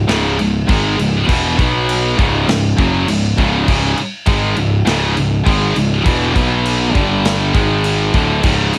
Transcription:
0.07 picked electric bass C#1, distorted electric guitar C#2 G#2 C#3, snare, crash
0.38 picked electric bass C#1, distorted electric guitar C#2 G#2, crash
0.67 picked electric bass G#1, distorted electric guitar G#2 D#3 G#3, kick, crash
0.97 picked electric bass C#1, distorted electric guitar C#2 G#2, crash
1.27 picked electric bass E1, distorted electric guitar E2 B2 E3, kick, crash
1.57 picked electric bass B1, distorted electric guitar B2 F#3 B3, kick, crash
1.89 crash
2.17 picked electric bass C#1, distorted electric guitar C#2 G#2 C#3, kick, crash
2.47 picked electric bass C#1, distorted electric guitar C#2 G#2, snare, crash
2.77 picked electric bass F#1, distorted electric guitar F#2 C#3 F#3, kick, crash
3.07 picked electric bass C#1, distorted electric guitar C#2 G#2, crash
3.37 picked electric bass C#1, distorted electric guitar C#2 G#2 C#3, kick, crash
3.67 picked electric bass C#1, distorted electric guitar C#2 G#2 C#3, kick, crash
3.97 muted distorted electric guitar stroke, muted picked electric bass stroke, crash
4.26 picked electric bass G#1, distorted electric guitar G#2 D#3 G#3, kick, crash
4.56 picked electric bass C#1, distorted electric guitar C#2 G#2, crash
4.85 picked electric bass C#1, distorted electric guitar C#2 G#2 C#3, snare, crash
5.14 picked electric bass C#1, distorted electric guitar C#2 G#2, crash
5.44 picked electric bass G#1, distorted electric guitar G#2 D#3 G#3, kick, crash
5.75 picked electric bass C#1, distorted electric guitar C#2 G#2, crash
6.04 picked electric bass E1, distorted electric guitar E2 B2 E3, kick, crash
6.33 picked electric bass B1, distorted electric guitar B2 F#3 B3, kick, crash
6.65 crash
6.92 picked electric bass G1, distorted electric guitar G2 D3 G3, kick, crash
7.25 snare, crash
7.53 picked electric bass G#1, distorted electric guitar G#2 D#3 G#3, kick, crash
7.84 crash
8.13 picked electric bass D1, distorted electric guitar D2 A2 D3, kick, crash
8.43 picked electric bass C#1, distorted electric guitar C#2 G#2 C#3, kick, crash
8.73 muted distorted electric guitar stroke, muted picked electric bass stroke, crash

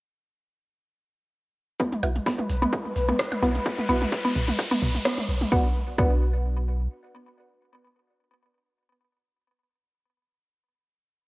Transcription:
1.80 synth arpeggio sound B3, synth texture B4, kick, riser, cabasa, shaker
1.92 closed hi-hat, high tom, cabasa
2.03 sub bass B1, synth stab B3 E4 F#4, open hi-hat, cabasa, percussion blips, shaker
2.16 closed hi-hat, high tom, cabasa
2.26 synth arpeggio sound B3, kick, snare, cabasa, shaker
2.38 closed hi-hat, high tom, cabasa
2.49 sub bass B1, snare, open hi-hat, cabasa, shaker
2.62 synth arpeggio sound B3, closed hi-hat, high tom, cabasa
2.73 kick, cabasa, shaker
2.85 high tom, cabasa
2.96 sub bass B1, snare, open hi-hat, cabasa, shaker
3.09 synth arpeggio sound B3, closed hi-hat, high tom, cabasa
3.19 kick, cross-stick, snare, cabasa, shaker
3.31 closed hi-hat, high tom, cabasa, percussion blips
3.42 sub bass B1, synth arpeggio sound B3, synth stab B3 E4 F#4, open hi-hat, cabasa, shaker
3.55 closed hi-hat, high tom, cabasa
3.66 kick, cabasa, shaker
3.78 closed hi-hat, high tom, cabasa
3.89 sub bass B1, synth stab B3 E4 F#4, synth arpeggio sound B3, open hi-hat, cabasa, shaker
4.01 closed hi-hat, high tom, cabasa
4.12 kick, snare, cabasa, shaker
4.24 synth arpeggio sound B3, closed hi-hat, high tom, cabasa
4.35 sub bass B1, mid tom, open hi-hat, cabasa, shaker
4.48 closed hi-hat, high tom, cabasa
4.58 kick, cabasa, percussion blips, shaker
4.71 synth arpeggio sound B3, high tom, cabasa
4.82 sub bass B1, mid tom, open hi-hat, cabasa, shaker
4.95 closed hi-hat, high tom, cabasa
5.05 synth arpeggio sound B3, kick, cross-stick, snare, open hi-hat, cabasa
5.18 closed hi-hat, high tom, cabasa
5.29 sub bass B1, open hi-hat, cabasa
5.41 closed hi-hat, high tom, cabasa
5.52 sub bass B1, synth stab B3 D4 F#4, synth arpeggio sound B3, kick
5.98 sub bass B1, synth stab B3 D4 F#4, synth arpeggio sound B3, kick

